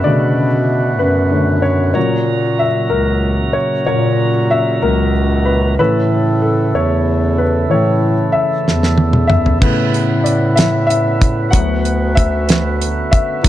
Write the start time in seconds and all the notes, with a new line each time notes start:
Already playing: B2 D3 A3 B3 C#4 F#4 B4 D5 E5 F#5
0.04 B2 C#3 D3 A3 D5
0.99 F#2 B4
1.31 D3 A3 C#4
1.62 C#5
1.94 A#2 C#3 F#3 A#3 C#4 C#5 A#5
2.59 E5
2.90 C#2 A#4
3.53 C#5
3.86 A#2 F#3 A#3 C#4 C#5
4.51 E5
4.82 C#2 F#3 A#3 C#4 A#4
5.45 B4
5.79 A2 E3 A3 C#4 E4 A4 B4
6.42 A4
6.75 E2 C#5
7.38 B4
7.70 A2 E3 A3 C#4 C#5
8.32 E5
8.67 E2, snare
8.83 snare
8.98 high tom
9.13 mid tom
9.27 E5, mid tom
9.46 floor tom
9.60 A2 C#3 A3 B3 E4 B4, kick, crash
9.94 closed hi-hat
10.24 D5, closed hi-hat
10.56 E5, snare, closed hi-hat
10.87 E5, closed hi-hat
11.21 kick, closed hi-hat
11.51 D2 D3 F#3 B3 E4 F#4 F#5, kick, closed hi-hat
11.85 closed hi-hat
12.15 E5, kick, closed hi-hat
12.49 snare, closed hi-hat
12.81 closed hi-hat
13.11 E5, kick, closed hi-hat
13.43 E3 F#3 G3 E4, kick, closed hi-hat